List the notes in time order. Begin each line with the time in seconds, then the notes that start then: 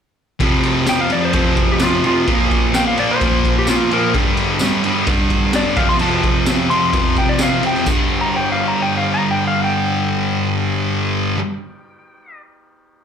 0.40 F2 C3 F3, kick, ride
0.63 ride
0.86 F2 C3 F3 G5, snare, ride, tambourine
1.01 F5
1.10 F2 C3 F3 D5, ride
1.25 C5
1.33 F2 C3 F3, kick, ride
1.57 kick, ride
1.72 G4
1.79 F2 C3 F3 F4, snare, ride, tambourine
2.03 F2 C3 F3 F4, ride
2.27 A#2 F3 A#3, kick, ride
2.51 kick, ride
2.74 A#2 F3 A#3 G5, snare, ride, tambourine
2.87 F5
2.97 A#2 F3 A#3 D5, ride
3.11 C5
3.21 A#2 F3 A#3, kick, ride
3.45 kick, ride
3.59 G4
3.66 A#2 F3 A#3 F4, snare, ride, tambourine
3.91 A#2 F3 A#3 A#4, ride
4.14 G2 D3 G3, kick, ride
4.37 ride
4.59 G2 D3 G3, snare, ride, tambourine
4.84 G2 D3 G3, ride
5.07 G2 D3 G3, kick, ride
5.30 kick, ride
5.53 G2 D3 G3 D5, snare, ride, tambourine
5.77 F2 C3 F3 F5, kick, ride
5.89 C6, snare
5.99 F2 C3 F3 A5, ride
6.23 kick, ride
6.46 F2 C3 F3, snare, ride, tambourine
6.70 F2 C3 F3 C6, ride
6.93 F2 C3 F3, kick, ride
7.16 G5, kick, ride
7.29 D5
7.39 F2 C3 F3, snare, ride, tambourine
7.43 F5
7.62 F2 C3 F3, ride
7.67 G5
7.75 snare
7.85 G2 D3, kick, crash, tambourine
7.89 G3
8.21 A#5
8.36 G5
8.52 F5
8.68 A#5
8.82 G5
8.97 F5
9.14 A#5
9.31 G5
9.47 F5
9.64 G5